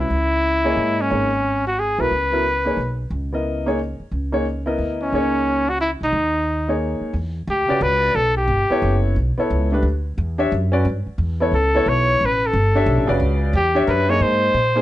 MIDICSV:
0, 0, Header, 1, 5, 480
1, 0, Start_track
1, 0, Tempo, 336323
1, 130, Time_signature, 3, 2, 24, 8
1, 21147, End_track
2, 0, Start_track
2, 0, Title_t, "Trumpet"
2, 0, Program_c, 0, 56
2, 5, Note_on_c, 0, 64, 87
2, 1440, Note_on_c, 0, 61, 84
2, 1461, Note_off_c, 0, 64, 0
2, 2374, Note_off_c, 0, 61, 0
2, 2384, Note_on_c, 0, 66, 86
2, 2561, Note_on_c, 0, 68, 80
2, 2582, Note_off_c, 0, 66, 0
2, 2867, Note_on_c, 0, 71, 89
2, 2888, Note_off_c, 0, 68, 0
2, 4287, Note_off_c, 0, 71, 0
2, 7171, Note_on_c, 0, 61, 86
2, 8127, Note_on_c, 0, 66, 90
2, 8149, Note_off_c, 0, 61, 0
2, 8283, Note_off_c, 0, 66, 0
2, 8292, Note_on_c, 0, 64, 87
2, 8425, Note_off_c, 0, 64, 0
2, 8614, Note_on_c, 0, 63, 84
2, 9679, Note_off_c, 0, 63, 0
2, 10710, Note_on_c, 0, 67, 83
2, 11166, Note_on_c, 0, 71, 98
2, 11187, Note_off_c, 0, 67, 0
2, 11635, Note_on_c, 0, 69, 88
2, 11657, Note_off_c, 0, 71, 0
2, 11940, Note_off_c, 0, 69, 0
2, 11946, Note_on_c, 0, 67, 80
2, 12848, Note_off_c, 0, 67, 0
2, 16475, Note_on_c, 0, 69, 87
2, 16968, Note_on_c, 0, 73, 102
2, 16989, Note_off_c, 0, 69, 0
2, 17490, Note_on_c, 0, 71, 94
2, 17512, Note_off_c, 0, 73, 0
2, 17790, Note_on_c, 0, 69, 84
2, 17812, Note_off_c, 0, 71, 0
2, 18712, Note_off_c, 0, 69, 0
2, 19357, Note_on_c, 0, 67, 86
2, 19751, Note_off_c, 0, 67, 0
2, 19795, Note_on_c, 0, 70, 64
2, 19832, Note_on_c, 0, 71, 99
2, 19854, Note_off_c, 0, 70, 0
2, 20119, Note_on_c, 0, 73, 95
2, 20141, Note_off_c, 0, 71, 0
2, 20295, Note_on_c, 0, 72, 90
2, 20316, Note_off_c, 0, 73, 0
2, 21147, Note_off_c, 0, 72, 0
2, 21147, End_track
3, 0, Start_track
3, 0, Title_t, "Grand piano"
3, 0, Program_c, 1, 0
3, 919, Note_on_c, 1, 58, 61
3, 924, Note_on_c, 1, 75, 63
3, 931, Note_on_c, 1, 68, 59
3, 936, Note_on_c, 1, 73, 70
3, 1538, Note_off_c, 1, 58, 0
3, 1540, Note_off_c, 1, 75, 0
3, 1543, Note_off_c, 1, 68, 0
3, 1546, Note_off_c, 1, 73, 0
3, 1570, Note_on_c, 1, 58, 43
3, 1580, Note_on_c, 1, 63, 40
3, 1580, Note_on_c, 1, 68, 41
3, 1586, Note_on_c, 1, 73, 56
3, 1841, Note_off_c, 1, 58, 0
3, 1846, Note_off_c, 1, 63, 0
3, 1846, Note_off_c, 1, 68, 0
3, 1849, Note_off_c, 1, 73, 0
3, 2832, Note_on_c, 1, 54, 59
3, 2835, Note_on_c, 1, 59, 53
3, 2841, Note_on_c, 1, 64, 50
3, 2850, Note_on_c, 1, 70, 67
3, 2991, Note_off_c, 1, 54, 0
3, 2992, Note_off_c, 1, 59, 0
3, 2996, Note_off_c, 1, 64, 0
3, 3000, Note_off_c, 1, 70, 0
3, 3311, Note_on_c, 1, 54, 64
3, 3322, Note_on_c, 1, 59, 53
3, 3326, Note_on_c, 1, 64, 57
3, 3332, Note_on_c, 1, 70, 66
3, 3470, Note_off_c, 1, 54, 0
3, 3476, Note_off_c, 1, 59, 0
3, 3478, Note_off_c, 1, 64, 0
3, 3481, Note_off_c, 1, 70, 0
3, 3784, Note_on_c, 1, 58, 56
3, 3788, Note_on_c, 1, 63, 44
3, 3799, Note_on_c, 1, 68, 50
3, 3812, Note_on_c, 1, 73, 53
3, 3946, Note_off_c, 1, 58, 0
3, 3948, Note_off_c, 1, 63, 0
3, 3954, Note_off_c, 1, 68, 0
3, 3960, Note_off_c, 1, 73, 0
3, 4747, Note_on_c, 1, 59, 52
3, 4755, Note_on_c, 1, 64, 45
3, 4763, Note_on_c, 1, 70, 47
3, 4773, Note_on_c, 1, 75, 61
3, 5196, Note_off_c, 1, 59, 0
3, 5200, Note_off_c, 1, 64, 0
3, 5205, Note_off_c, 1, 70, 0
3, 5209, Note_off_c, 1, 75, 0
3, 5227, Note_on_c, 1, 58, 65
3, 5230, Note_on_c, 1, 63, 54
3, 5247, Note_on_c, 1, 68, 58
3, 5249, Note_on_c, 1, 73, 65
3, 5387, Note_off_c, 1, 58, 0
3, 5389, Note_off_c, 1, 63, 0
3, 5397, Note_off_c, 1, 68, 0
3, 5398, Note_off_c, 1, 73, 0
3, 6170, Note_on_c, 1, 58, 62
3, 6175, Note_on_c, 1, 63, 57
3, 6181, Note_on_c, 1, 68, 52
3, 6191, Note_on_c, 1, 73, 71
3, 6338, Note_off_c, 1, 58, 0
3, 6341, Note_off_c, 1, 63, 0
3, 6343, Note_off_c, 1, 68, 0
3, 6349, Note_off_c, 1, 73, 0
3, 6649, Note_on_c, 1, 59, 64
3, 6652, Note_on_c, 1, 64, 61
3, 6663, Note_on_c, 1, 70, 57
3, 6668, Note_on_c, 1, 75, 67
3, 7279, Note_off_c, 1, 59, 0
3, 7280, Note_off_c, 1, 64, 0
3, 7286, Note_off_c, 1, 70, 0
3, 7289, Note_off_c, 1, 75, 0
3, 7329, Note_on_c, 1, 58, 59
3, 7335, Note_on_c, 1, 63, 56
3, 7342, Note_on_c, 1, 68, 50
3, 7351, Note_on_c, 1, 73, 73
3, 8046, Note_off_c, 1, 58, 0
3, 8049, Note_off_c, 1, 63, 0
3, 8053, Note_off_c, 1, 68, 0
3, 8058, Note_off_c, 1, 73, 0
3, 9539, Note_on_c, 1, 58, 58
3, 9546, Note_on_c, 1, 63, 53
3, 9552, Note_on_c, 1, 68, 56
3, 9552, Note_on_c, 1, 73, 62
3, 10163, Note_off_c, 1, 58, 0
3, 10167, Note_off_c, 1, 63, 0
3, 10170, Note_off_c, 1, 68, 0
3, 10170, Note_off_c, 1, 73, 0
3, 10965, Note_on_c, 1, 49, 66
3, 10973, Note_on_c, 1, 66, 65
3, 10977, Note_on_c, 1, 71, 58
3, 10991, Note_on_c, 1, 74, 81
3, 11596, Note_off_c, 1, 49, 0
3, 11600, Note_off_c, 1, 66, 0
3, 11602, Note_off_c, 1, 71, 0
3, 11609, Note_off_c, 1, 74, 0
3, 12418, Note_on_c, 1, 59, 71
3, 12428, Note_on_c, 1, 64, 63
3, 12443, Note_on_c, 1, 69, 62
3, 12445, Note_on_c, 1, 73, 75
3, 13043, Note_off_c, 1, 59, 0
3, 13048, Note_off_c, 1, 64, 0
3, 13056, Note_off_c, 1, 69, 0
3, 13057, Note_off_c, 1, 73, 0
3, 13382, Note_on_c, 1, 59, 67
3, 13399, Note_on_c, 1, 64, 56
3, 13408, Note_on_c, 1, 69, 64
3, 13411, Note_on_c, 1, 73, 68
3, 13833, Note_off_c, 1, 59, 0
3, 13841, Note_off_c, 1, 64, 0
3, 13846, Note_off_c, 1, 69, 0
3, 13847, Note_off_c, 1, 73, 0
3, 13873, Note_on_c, 1, 57, 61
3, 13880, Note_on_c, 1, 62, 60
3, 13893, Note_on_c, 1, 67, 57
3, 13900, Note_on_c, 1, 71, 73
3, 14029, Note_off_c, 1, 57, 0
3, 14032, Note_off_c, 1, 62, 0
3, 14039, Note_off_c, 1, 67, 0
3, 14043, Note_off_c, 1, 71, 0
3, 14818, Note_on_c, 1, 62, 71
3, 14823, Note_on_c, 1, 67, 61
3, 14831, Note_on_c, 1, 73, 66
3, 14839, Note_on_c, 1, 76, 79
3, 14982, Note_off_c, 1, 62, 0
3, 14985, Note_off_c, 1, 67, 0
3, 14989, Note_off_c, 1, 73, 0
3, 14993, Note_off_c, 1, 76, 0
3, 15297, Note_on_c, 1, 61, 76
3, 15311, Note_on_c, 1, 66, 68
3, 15315, Note_on_c, 1, 71, 62
3, 15317, Note_on_c, 1, 74, 79
3, 15462, Note_off_c, 1, 61, 0
3, 15469, Note_off_c, 1, 66, 0
3, 15471, Note_off_c, 1, 71, 0
3, 15472, Note_off_c, 1, 74, 0
3, 16275, Note_on_c, 1, 59, 68
3, 16284, Note_on_c, 1, 64, 59
3, 16285, Note_on_c, 1, 69, 65
3, 16301, Note_on_c, 1, 73, 77
3, 16432, Note_off_c, 1, 59, 0
3, 16437, Note_off_c, 1, 64, 0
3, 16437, Note_off_c, 1, 69, 0
3, 16445, Note_off_c, 1, 73, 0
3, 16765, Note_on_c, 1, 59, 74
3, 16770, Note_on_c, 1, 64, 64
3, 16775, Note_on_c, 1, 69, 66
3, 16789, Note_on_c, 1, 73, 87
3, 17380, Note_off_c, 1, 59, 0
3, 17383, Note_off_c, 1, 64, 0
3, 17386, Note_off_c, 1, 69, 0
3, 17393, Note_off_c, 1, 73, 0
3, 18197, Note_on_c, 1, 62, 78
3, 18206, Note_on_c, 1, 73, 64
3, 18208, Note_on_c, 1, 67, 72
3, 18221, Note_on_c, 1, 76, 83
3, 18645, Note_off_c, 1, 62, 0
3, 18649, Note_off_c, 1, 73, 0
3, 18650, Note_off_c, 1, 67, 0
3, 18653, Note_on_c, 1, 49, 84
3, 18657, Note_off_c, 1, 76, 0
3, 18664, Note_on_c, 1, 66, 67
3, 18673, Note_on_c, 1, 71, 72
3, 18682, Note_on_c, 1, 74, 82
3, 19286, Note_off_c, 1, 49, 0
3, 19292, Note_off_c, 1, 66, 0
3, 19296, Note_off_c, 1, 71, 0
3, 19301, Note_off_c, 1, 74, 0
3, 19623, Note_on_c, 1, 62, 73
3, 19625, Note_on_c, 1, 67, 70
3, 19638, Note_on_c, 1, 73, 71
3, 19643, Note_on_c, 1, 76, 86
3, 20079, Note_off_c, 1, 62, 0
3, 20080, Note_off_c, 1, 67, 0
3, 20087, Note_off_c, 1, 73, 0
3, 20089, Note_off_c, 1, 76, 0
3, 20109, Note_on_c, 1, 58, 73
3, 20110, Note_on_c, 1, 63, 65
3, 20125, Note_on_c, 1, 68, 65
3, 20131, Note_on_c, 1, 75, 78
3, 20735, Note_off_c, 1, 58, 0
3, 20736, Note_off_c, 1, 63, 0
3, 20743, Note_off_c, 1, 68, 0
3, 20746, Note_off_c, 1, 75, 0
3, 21058, Note_on_c, 1, 58, 74
3, 21068, Note_on_c, 1, 63, 62
3, 21074, Note_on_c, 1, 68, 70
3, 21077, Note_on_c, 1, 72, 78
3, 21147, Note_off_c, 1, 58, 0
3, 21147, Note_off_c, 1, 63, 0
3, 21147, Note_off_c, 1, 68, 0
3, 21147, Note_off_c, 1, 72, 0
3, 21147, End_track
4, 0, Start_track
4, 0, Title_t, "Upright bass"
4, 0, Program_c, 2, 32
4, 143, Note_on_c, 2, 37, 69
4, 1039, Note_off_c, 2, 37, 0
4, 1091, Note_on_c, 2, 44, 68
4, 1537, Note_off_c, 2, 44, 0
4, 1584, Note_on_c, 2, 32, 67
4, 2780, Note_off_c, 2, 32, 0
4, 2831, Note_on_c, 2, 35, 62
4, 2996, Note_off_c, 2, 35, 0
4, 3010, Note_on_c, 2, 37, 61
4, 3911, Note_off_c, 2, 37, 0
4, 3951, Note_on_c, 2, 35, 64
4, 4404, Note_off_c, 2, 35, 0
4, 4430, Note_on_c, 2, 37, 71
4, 5641, Note_off_c, 2, 37, 0
4, 5872, Note_on_c, 2, 37, 66
4, 6780, Note_off_c, 2, 37, 0
4, 6827, Note_on_c, 2, 38, 61
4, 7280, Note_off_c, 2, 38, 0
4, 7314, Note_on_c, 2, 37, 69
4, 8522, Note_off_c, 2, 37, 0
4, 8573, Note_on_c, 2, 36, 57
4, 8733, Note_off_c, 2, 36, 0
4, 8742, Note_on_c, 2, 39, 73
4, 9956, Note_off_c, 2, 39, 0
4, 10183, Note_on_c, 2, 40, 70
4, 10657, Note_off_c, 2, 40, 0
4, 10668, Note_on_c, 2, 38, 83
4, 10954, Note_off_c, 2, 38, 0
4, 11143, Note_on_c, 2, 37, 84
4, 11617, Note_off_c, 2, 37, 0
4, 11626, Note_on_c, 2, 35, 77
4, 12088, Note_off_c, 2, 35, 0
4, 12097, Note_on_c, 2, 31, 79
4, 12389, Note_off_c, 2, 31, 0
4, 12587, Note_on_c, 2, 30, 79
4, 13060, Note_off_c, 2, 30, 0
4, 13075, Note_on_c, 2, 35, 76
4, 13358, Note_off_c, 2, 35, 0
4, 13563, Note_on_c, 2, 37, 83
4, 14014, Note_off_c, 2, 37, 0
4, 14023, Note_on_c, 2, 38, 81
4, 14498, Note_off_c, 2, 38, 0
4, 14524, Note_on_c, 2, 40, 81
4, 14990, Note_off_c, 2, 40, 0
4, 15013, Note_on_c, 2, 42, 89
4, 15475, Note_off_c, 2, 42, 0
4, 15481, Note_on_c, 2, 43, 81
4, 15764, Note_off_c, 2, 43, 0
4, 15956, Note_on_c, 2, 40, 76
4, 16427, Note_off_c, 2, 40, 0
4, 16434, Note_on_c, 2, 37, 73
4, 16906, Note_off_c, 2, 37, 0
4, 16928, Note_on_c, 2, 35, 82
4, 17394, Note_off_c, 2, 35, 0
4, 17422, Note_on_c, 2, 33, 74
4, 17882, Note_off_c, 2, 33, 0
4, 17888, Note_on_c, 2, 31, 87
4, 18348, Note_off_c, 2, 31, 0
4, 18356, Note_on_c, 2, 35, 93
4, 18516, Note_off_c, 2, 35, 0
4, 18516, Note_on_c, 2, 33, 59
4, 18661, Note_off_c, 2, 33, 0
4, 18669, Note_on_c, 2, 30, 67
4, 18828, Note_off_c, 2, 30, 0
4, 18834, Note_on_c, 2, 37, 82
4, 19305, Note_off_c, 2, 37, 0
4, 19314, Note_on_c, 2, 40, 88
4, 19789, Note_off_c, 2, 40, 0
4, 19802, Note_on_c, 2, 42, 90
4, 20264, Note_off_c, 2, 42, 0
4, 20273, Note_on_c, 2, 44, 78
4, 20745, Note_off_c, 2, 44, 0
4, 20754, Note_on_c, 2, 46, 80
4, 21147, Note_off_c, 2, 46, 0
4, 21147, End_track
5, 0, Start_track
5, 0, Title_t, "Muted upright bass strokes"
5, 5708, Note_on_c, 9, 29, 34
5, 5850, Note_off_c, 9, 29, 0
5, 10000, Note_on_c, 9, 29, 35
5, 10143, Note_off_c, 9, 29, 0
5, 10983, Note_on_c, 9, 29, 40
5, 11125, Note_off_c, 9, 29, 0
5, 12421, Note_on_c, 9, 29, 42
5, 12563, Note_off_c, 9, 29, 0
5, 13386, Note_on_c, 9, 29, 43
5, 13528, Note_off_c, 9, 29, 0
5, 15791, Note_on_c, 9, 29, 40
5, 15934, Note_off_c, 9, 29, 0
5, 21147, End_track
0, 0, End_of_file